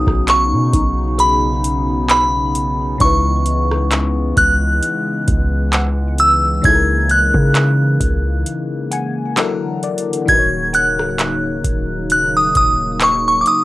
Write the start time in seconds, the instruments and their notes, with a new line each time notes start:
Already playing: fm electric piano B2 B3 C#4 D#4 F#4, analog synth pad C#3 B3 C#4 D#4, synth bell D#6
0.07 808-style bass B1, kick, cross-stick
0.28 synth bell C#6, clap, closed hi-hat
0.53 808-style bass B2
0.73 808-style bass B1, synth pluck D#4, kick, closed hi-hat
1.18 synth pluck G#4, synth bell B5, closed hi-hat
1.64 closed hi-hat
2.09 synth bell B5, clap, closed hi-hat
2.55 closed hi-hat
2.98 808-style bass C#2, fm electric piano C#3 C#4 D#4, analog synth pad E3 G#3, synth bell C#6, kick, closed hi-hat
3.03 fm electric piano E4 B4
3.46 closed hi-hat
3.71 cross-stick
3.91 clap, closed hi-hat
4.37 808-style bass C#2, synth bell F#6, kick, closed hi-hat
4.83 closed hi-hat
5.28 808-style bass C#2, kick, closed hi-hat
5.73 synth pluck F#5, clap, closed hi-hat
6.18 synth bell E6, closed hi-hat
6.62 808-style bass C#2, fm electric piano C#3 C#4 D#4, analog synth pad C#3 A#3, synth bell G#6, kick, closed hi-hat
6.66 fm electric piano E4 G#4 A4
6.75 fm electric piano A#4
7.09 synth bell F#6, closed hi-hat
7.34 808-style bass C#3, kick
7.55 clap, closed hi-hat
8.00 808-style bass C#2, kick, closed hi-hat
8.46 closed hi-hat
8.91 synth pluck F#5, fm electric piano G#5, closed hi-hat
9.36 analog synth pad D3 F#3, fm electric piano F#3 D4 E4 A4 A#4 F#5, clap, closed hi-hat
9.83 fm electric piano D5, closed hi-hat
9.98 closed hi-hat
10.13 closed hi-hat
10.26 808-style bass D#1, analog synth pad C#3 F#3 A#3 D#4, fm electric piano D#3 D#4 F#4, synth bell G#6, kick, closed hi-hat
10.31 fm electric piano A#4 B4
10.39 fm electric piano C#5
10.73 synth pluck F#5, synth bell F#6, closed hi-hat
10.98 808-style bass C#1, cross-stick
11.19 clap, closed hi-hat
11.64 808-style bass D#1, kick, closed hi-hat
12.10 synth bell F#6, closed hi-hat
12.37 synth bell D#6
12.55 808-style bass D#1, synth bell D#6, kick, closed hi-hat
13.01 synth bell C#6, clap, closed hi-hat
13.28 synth bell C#6
13.41 synth bell D6
13.46 synth bell D#6, closed hi-hat